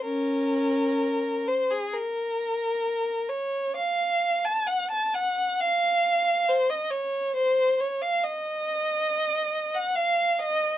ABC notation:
X:1
M:4/4
L:1/16
Q:1/4=67
K:Bbm
V:1 name="Violin"
[DB]6 c A B6 d2 | f3 =a g a g2 f4 c e d2 | c2 d f e6- e g f2 e2 |]